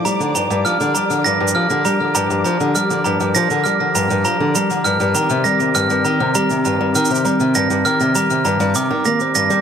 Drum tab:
SH |x-----x-----x-----x-----x-----x-----x-----x-----x--------x--------x-----x-----------x-----x-----|x-----x-----x-----x-----x-----x-----x-----x-----x-----------x-----x-----x-----------x-----x-----|x-----x-----x-----x-----x-----x-----x-----x-----x-----------x-----x-----x-----------x---x-x-x---|x-----x-----x-----x-----x-----x-----x-----x-----x-----x-----x-----------x-----x-----x-----x-----|